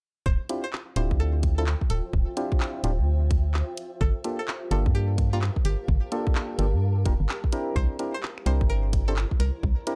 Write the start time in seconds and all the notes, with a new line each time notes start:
0.26 D1 F4 C5, kick
0.44 C5
0.49 C4 D4 E4 F4 G4 G5, closed hi-hat
0.64 C5
0.73 clap
0.96 D1 C4 D4 E4 F4 G4 C5, closed hi-hat
1.00 E5
1.11 D2, kick
1.20 A4
1.43 kick, closed hi-hat
1.58 C4 D4 E4 F4 A4
1.67 clap
1.81 kick
1.90 D1 A4, closed hi-hat
2.13 D1, kick
2.37 C4 D4 E4 F4 G4, closed hi-hat
2.52 kick
2.60 clap
2.84 D1 C4 D4 E4 F4 G4, closed hi-hat
2.99 D2
3.31 kick, closed hi-hat
3.54 clap
3.77 closed hi-hat
4.01 G1 G4 A4, kick
4.07 A#4
4.24 A#3 D4 F4 G4 A4, closed hi-hat
4.39 A4
4.48 clap
4.61 F5 A5
4.71 G1 A#3 D4 F4 G4 A4, closed hi-hat
4.86 G2, kick
4.95 G4
5.18 kick, closed hi-hat
5.33 A#3 D4 F4 G4 A#4
5.42 clap
5.56 kick
5.65 G1 G4, closed hi-hat
5.88 G1, kick
6.12 A#3 D4 F4 G4 A4, closed hi-hat
6.27 kick
6.35 clap
6.59 G1 A#3 D4 F4 G4 A4, closed hi-hat
6.73 G2
7.05 D1 A#3 D4 F4 G4 A#4, kick, closed hi-hat
7.20 G1
7.29 clap
7.44 kick
7.52 C4 D4 E4 G4 A#4, closed hi-hat
7.76 C2 E4 C5, kick
7.99 C4 D4 E4 G4 A#4, closed hi-hat
8.14 C5 A#5
8.20 C5, clap
8.38 finger snap
8.46 C2 C4 D4 E4 G4 A#4 C5, closed hi-hat
8.61 G1, kick
8.67 A#4 D5
8.93 kick, closed hi-hat
9.08 C4 D4 E4 G4 A4 C5
9.16 clap
9.31 kick
9.40 C2 A#4, finger snap, closed hi-hat
9.63 C2, kick
9.87 C4 D4 E4 G4 A#4, closed hi-hat